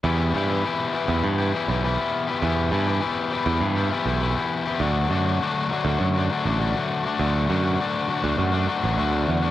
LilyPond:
<<
  \new Staff \with { instrumentName = "Overdriven electric guitar" } { \time 4/4 \key e \minor \tempo 4 = 101 <e b e' g'>8 <e b e' g'>16 <b e' g'>16 <e b e' g'>8 <e b e' g'>16 <b e' g'>8 <b e' g'>16 <e b e' g'>16 <b e' g'>16 <e b e' g'>16 <b e' g'>8 <b e' g'>16 | <e b e' g'>8 <e b e' g'>16 <b e' g'>16 <e b e' g'>8 <e b e' g'>16 <b e' g'>8 <b e' g'>16 <e b e' g'>16 <b e' g'>16 <e b e' g'>16 <b e' g'>8 <b e' g'>16 | <d fis a d' fis'>8 <fis a d' fis'>16 <a d' fis'>16 <d fis a d' fis'>8 <fis a d' fis'>16 <a d' fis'>8 <a d' fis'>16 <fis a d' fis'>16 <a d' fis'>16 <d fis a d' fis'>16 <a d' fis'>8 <a d' fis'>16 | <d fis a d' fis'>8 <fis a d' fis'>16 <a d' fis'>16 <d fis a d' fis'>8 <fis a d' fis'>16 <a d' fis'>8 <a d' fis'>16 <fis a d' fis'>16 <a d' fis'>16 <d fis a d' fis'>16 <a d' fis'>8 <a d' fis'>16 | }
  \new Staff \with { instrumentName = "Picked electric bass" } { \clef bass \time 4/4 \key e \minor e,8 g,8 r8. e,16 g,8 r16 b,,8 r8. | e,8 g,8 r8. e,16 g,8 r16 b,,8 r8. | d,8 fis,8 r8. d,16 fis,8 r16 a,,8 r8. | d,8 fis,8 r8. d,16 fis,8 r16 a,,16 d,8 e,8 | }
>>